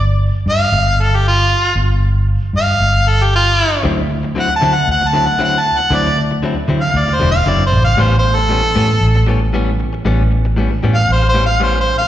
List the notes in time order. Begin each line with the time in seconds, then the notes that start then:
Already playing: G1
0.46 G2 F5
0.72 G1
1.02 A4
1.16 G4
1.28 F4
1.75 G1
2.53 G2 F5
2.80 G1
3.09 A4
3.24 G4
3.35 F4
3.83 D2 D3 F#3 C4 E4
4.09 muted clean electric guitar stroke
4.23 muted clean electric guitar stroke
4.35 D3 F#3 C4 E4
4.39 F#5
4.50 muted clean electric guitar stroke
4.56 A5
4.61 D3 F#3 C4 E4
4.74 F#5, muted clean electric guitar stroke
4.88 D2 F#5
5.01 muted clean electric guitar stroke
5.08 A5
5.13 D3 F#3 C4 E4
5.26 F#5, muted clean electric guitar stroke
5.39 D3 F#3 C4 E4
5.43 F#5
5.60 A5
5.65 muted clean electric guitar stroke
5.78 F#5, muted clean electric guitar stroke
5.90 D2 D3 F#3 C4 E4
5.95 D5
6.17 muted clean electric guitar stroke
6.31 muted clean electric guitar stroke
6.43 D3 F#3 C4 E4
6.56 muted clean electric guitar stroke
6.68 D3 F#3 C4 E4
6.81 F5, muted clean electric guitar stroke
6.94 D2
6.98 D5
7.08 muted clean electric guitar stroke
7.15 C5
7.19 E1 D3 F#3 C4 E4
7.31 F5, muted clean electric guitar stroke
7.46 F#1 D3 F#3 C4 E4 D5
7.66 C5
7.72 A1, muted clean electric guitar stroke
7.84 F5, muted clean electric guitar stroke
7.97 A1 A2 G3 B3 C#4
8.01 C5
8.18 C5
8.23 muted clean electric guitar stroke
8.35 A4, muted clean electric guitar stroke
8.49 A2 G3 B3 C#4
8.63 muted clean electric guitar stroke
8.75 A2 G3 B3 C#4
8.89 muted clean electric guitar stroke
9.01 A1
9.15 muted clean electric guitar stroke
9.27 A2 G3 B3 C#4
9.41 muted clean electric guitar stroke
9.53 A2 G3 B3 C#4
9.79 muted clean electric guitar stroke
9.93 muted clean electric guitar stroke
10.05 A1 A2 G3 B3 C#4
10.31 muted clean electric guitar stroke
10.45 muted clean electric guitar stroke
10.56 A2 G3 B3 C#4
10.71 muted clean electric guitar stroke
10.83 A2 G3 B3 C#4
10.95 F5, muted clean electric guitar stroke
11.09 A1 C5
11.22 muted clean electric guitar stroke
11.29 C5
11.34 A2 G3 B3 C#4
11.46 F5, muted clean electric guitar stroke
11.60 A2 G3 B3 C#4 C5
11.80 C5
11.86 muted clean electric guitar stroke
11.98 F5, muted clean electric guitar stroke